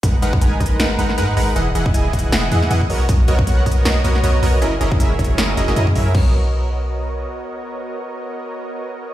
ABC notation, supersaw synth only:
X:1
M:4/4
L:1/16
Q:"Swing 16ths" 1/4=157
K:B
V:1 name="Supersaw synth"
[G,DABf] z [G,DABf]2 [G,DABg]2 [G,DABd]2 [G,DABf]2 [G,DABf]2 [G,DABf]2 [G,DABf]2 | [E,EGdf] z [E,EGdf]2 [E,EGdg]2 [E,EGdf]2 [E,EGdf]2 [E,EGdf]2 [E,EGdf]2 [B,FAcd]2 | [B,FAd] z [B,FAcd]2 [B,FAcf]2 [B,FAcd]2 [B,FAcd]2 [B,FAcd]2 [B,FAcd]2 [B,FAcd]2 | [F,CEGAd] z [F,CEGAd]2 [F,CEGAe]2 [F,CEGAc]2 [F,CEGAd]2 [F,CEGAd] [F,CEGAd] [F,CEGAd]2 [F,CEGAe]2 |
[B,FAcd]16- | [B,FAcd]16 |]